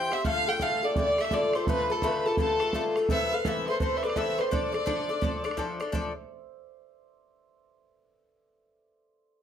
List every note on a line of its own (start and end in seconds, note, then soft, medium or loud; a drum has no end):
0.00 0.12 E3 medium
0.00 0.12 C4 medium
0.00 0.11 G4 medium
0.00 0.91 A4 medium
0.00 1.11 C5 medium
0.00 0.18 F5 medium
0.00 0.15 G5 loud
0.00 0.48 G5 medium
0.00 0.14 G6 medium
0.11 0.25 C4 soft
0.11 0.25 G4 soft
0.11 0.24 C5 medium
0.11 0.31 E5 medium
0.11 0.26 E5 medium
0.11 0.24 E6 medium
0.11 bodhran medium
0.25 0.47 D3 medium
0.25 0.47 A3 medium
0.25 0.47 F4 medium
0.25 0.46 A4 loud
0.25 0.61 F5 medium
0.25 0.50 F5 loud
0.25 0.58 F6 medium
0.25 bodhran medium
0.48 0.61 A3 soft
0.48 0.61 F4 medium
0.48 0.61 A4 medium
0.48 0.64 G5 loud
0.60 0.83 D3 medium
0.60 0.84 A3 medium
0.60 0.83 F4 medium
0.60 0.82 A4 medium
0.60 1.26 F5 medium
0.60 0.86 F5 loud
0.60 0.82 F6 medium
0.60 bodhran medium
0.83 0.96 A3 soft
0.83 0.97 F4 medium
0.83 0.96 A4 medium
0.83 0.96 D5 medium
0.83 0.97 D5 medium
0.83 0.96 D6 medium
0.96 1.19 D3 medium
0.96 1.19 A3 medium
0.96 1.19 F4 medium
0.96 1.18 A4 medium
0.96 1.33 D5 medium
0.96 1.22 D5 loud
0.96 1.29 D6 medium
0.96 bodhran medium
1.18 1.31 A3 soft
1.18 1.32 F4 medium
1.18 1.32 A4 medium
1.18 3.10 E5 medium
1.18 1.36 E5 medium
1.18 bodhran medium
1.24 bodhran medium
1.31 1.54 D3 medium
1.31 1.54 A3 medium
1.31 1.55 F4 medium
1.31 1.54 A4 medium
1.31 3.79 D5 medium
1.31 1.57 D5 loud
1.31 1.68 D6 medium
1.31 bodhran medium
1.53 1.68 A3 soft
1.53 1.68 F4 soft
1.53 1.68 A4 medium
1.53 1.75 C5 medium
1.53 1.68 C5 medium
1.53 bodhran medium
1.67 1.90 D3 medium
1.67 1.90 A3 medium
1.67 1.90 F4 medium
1.67 1.89 A4 medium
1.67 2.03 B4 medium
1.67 1.93 B4 loud
1.67 1.89 B5 medium
1.67 bodhran loud
1.90 2.02 A3 soft
1.90 2.03 F4 soft
1.90 2.03 A4 medium
1.90 2.26 A4 medium
1.90 2.08 A4 medium
2.02 2.25 D3 medium
2.02 2.26 A3 medium
2.02 2.26 F4 medium
2.02 2.24 A4 loud
2.02 3.74 B4 medium
2.02 2.28 B5 medium
2.02 bodhran loud
2.06 2.29 B4 medium
2.26 2.38 A3 soft
2.26 2.39 F4 medium
2.26 2.38 A4 medium
2.26 2.39 A4 medium
2.26 2.39 A5 medium
2.37 2.61 D3 medium
2.37 2.61 A3 medium
2.37 2.61 F4 medium
2.37 5.32 A4 medium
2.37 2.59 A4 medium
2.37 2.93 A4 medium
2.37 2.85 A5 medium
2.37 bodhran medium
2.60 2.74 A3 medium
2.60 2.74 F4 medium
2.60 2.73 A4 medium
2.60 bodhran medium
2.73 2.96 D3 medium
2.73 2.97 A3 medium
2.73 2.97 F4 medium
2.73 2.95 A4 medium
2.73 bodhran medium
2.96 3.10 A3 medium
2.96 3.10 F4 medium
2.96 3.09 A4 medium
2.96 bodhran medium
3.09 3.32 E3 medium
3.09 3.32 C4 medium
3.09 3.33 A4 loud
3.09 3.31 B4 medium
3.09 3.38 E5 medium
3.09 3.36 E5 loud
3.09 3.35 E6 medium
3.09 bodhran medium
3.32 3.45 C4 soft
3.32 3.46 A4 medium
3.32 3.45 B4 medium
3.32 3.51 F5 medium
3.32 3.49 F5 medium
3.32 3.46 F6 medium
3.45 3.68 E3 medium
3.45 3.68 C4 medium
3.45 3.68 A4 medium
3.45 3.67 B4 medium
3.45 4.16 E5 medium
3.45 3.69 E5 loud
3.45 3.68 E6 medium
3.45 bodhran medium
3.67 3.81 A4 medium
3.67 3.81 B4 medium
3.67 3.81 C5 medium
3.67 3.80 C6 medium
3.71 3.80 C4 soft
3.80 4.03 E3 medium
3.80 4.03 C4 medium
3.80 4.04 A4 medium
3.80 4.02 B4 medium
3.80 4.38 C5 medium
3.80 3.98 C5 loud
3.80 4.04 C6 medium
3.80 bodhran medium
3.97 4.05 E5 medium
4.02 4.16 C4 soft
4.02 4.16 A4 medium
4.02 4.16 B4 medium
4.02 4.18 D5 medium
4.02 4.52 D5 medium
4.02 4.16 D6 medium
4.02 bodhran medium
4.10 bodhran medium
4.16 4.39 E3 medium
4.16 4.39 C4 medium
4.16 4.38 A4 medium
4.16 4.37 B4 medium
4.16 6.46 E5 medium
4.16 4.42 E5 loud
4.16 4.40 E6 medium
4.16 bodhran medium
4.38 4.51 C4 soft
4.38 4.51 A4 soft
4.38 4.51 B4 medium
4.38 7.02 C5 medium
4.38 4.53 C5 medium
4.38 4.51 C6 medium
4.38 bodhran medium
4.50 4.74 F3 medium
4.50 4.73 D4 medium
4.50 4.73 A4 medium
4.50 5.55 D5 medium
4.50 4.71 D5 medium
4.50 5.55 D5 loud
4.50 5.57 D6 medium
4.50 bodhran medium
4.72 4.85 D4 soft
4.72 4.86 A4 medium
4.72 4.86 D5 medium
4.72 bodhran medium
4.86 5.09 F3 medium
4.86 5.09 D4 medium
4.86 5.09 A4 medium
4.86 5.08 D5 medium
4.86 bodhran medium
5.09 5.22 D4 medium
5.09 5.22 A4 medium
5.09 5.22 D5 medium
5.21 5.45 F3 medium
5.21 5.45 D4 medium
5.21 5.44 A4 medium
5.21 5.43 D5 medium
5.21 bodhran medium
5.44 5.56 D4 medium
5.44 5.57 A4 medium
5.44 5.58 D5 medium
5.44 bodhran medium
5.51 bodhran medium
5.57 5.80 F3 medium
5.57 5.80 D4 medium
5.57 5.80 A4 medium
5.57 5.78 D5 medium
5.57 bodhran medium
5.80 5.91 D4 medium
5.80 5.93 A4 medium
5.80 5.93 D5 medium
5.80 bodhran medium
5.92 6.11 F3 medium
5.92 6.11 D4 medium
5.92 6.12 A4 medium
5.92 6.12 D5 loud
5.92 bodhran medium